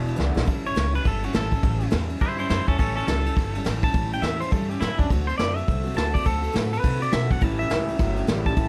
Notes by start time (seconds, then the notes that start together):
Already playing: E1 E2 B2
0.05 E3 G#3 D4 E4, ride
0.16 C#2 E2 B2 D3 E3 G#3 D4 E4, snare
0.34 B1 E3 G#3 D4 E4, snare
0.45 A1 A2 E3 G3 C#4 E4, kick, ride
0.64 G3 C#4 E4 C#5, ride
0.75 C#2 A2 E3 G3 C#4 E4, snare, ride
0.93 G3 C#4 E4 B4, ride
1.03 G1 E3 G3 C#4 E4 A4, kick, ride
1.23 G3 C#4 E4 F#4, ride
1.33 A1 A2 E3 G3 C#4 E4 A4, snare, ride
1.52 G3 C#4 E4, kick, ride
1.63 A1 A2 E3 G3 C#4 E4, kick, ride
1.81 G3 C#4 E4, ride
1.91 E2 A2 E3 G3 C#4 E4, snare, ride
2.08 G3 C#4 E4, ride
2.18 G2 E3 G3 E4 C5, kick, ride
2.36 G3 C#4 E4 C5, ride
2.49 F#2 A2 E3 G3 C#4 E4 C5, snare, ride
2.67 E2 G3 C#4 E4 A4, kick, ride
2.78 A1 A2 E3 G3 C#4 E4 A4, kick, ride
2.95 G3 C#4 E4 A4, ride
3.07 C#2 A2 E3 G3 C#4 E4 A4, snare, ride
3.24 G3 C#4 E4, ride
3.36 G1 E3 G3 C#4 E4, kick, ride
3.53 G3 C#4 E4, ride
3.65 A1 A2 E3 G3 C#4 E4, snare, ride
3.82 C#4 E4 A5, kick, ride
3.93 A1 A2 E3 G3 C#4 E4, kick, ride
4.12 G3 C#4 E4 G5, ride
4.22 E2 A2 E3 G3 C#4 E4 E5, snare, ride
4.40 G3 C#4 E4 C5, ride
4.51 G2 E3 G3 C#4 E4 A4, kick, ride
4.69 G3 C#4 E4 G4, ride
4.80 F#2 A2 E3 G3 C#4 E4, snare, ride
4.97 E2 G3 C#4 D4 E4, kick, ride
5.10 D2 D3 A3 C4 F#4, kick, ride
5.27 A3 C4 F#4 C5, ride
5.38 F#2 D3 A3 C4 F#4 D5, snare, ride
5.56 A3 C4 F#4 E5, ride
5.68 C2 D3 A3 C4 F#4, kick, ride
5.84 A3 C4 F#4, ride
5.94 D2 D3 A3 C4 F#4 A5, snare, ride
6.12 A3 C4 F#4 D5, kick, ride
6.23 D2 D3 A3 C4 F#4 A4, kick, ride
6.42 A3 C4 F#4, ride
6.52 A2 D3 A3 C4 F#4, snare, ride
6.71 A3 C4 F#4 B4, ride
6.82 C3 D3 A3 C4 F#4, kick, ride
6.99 A3 C4 F#4 D5, ride
7.12 B2 D3 A3 C4 F#4 E5, snare, ride
7.29 G1 A3 C4 F#4 F#5, kick, ride
7.41 A1 A2 E3 G3 C#4 E4 A5, kick, ride
7.57 G3 C#4 E4 E5, ride
7.70 C#2 A2 E3 G3 C#4 E4, snare, ride
7.87 G3 C#4 E4, ride
7.97 G1 A2 E3 F#3 G3 C#4 E4, kick, ride
8.16 G3 C#4 E4, ride
8.27 A1 A2 E3 G3 C#4 E4, snare, ride
8.45 G3 C#4 E4 A5, kick, ride
8.56 A1 A2 E3 G3 C#4 E4, kick, ride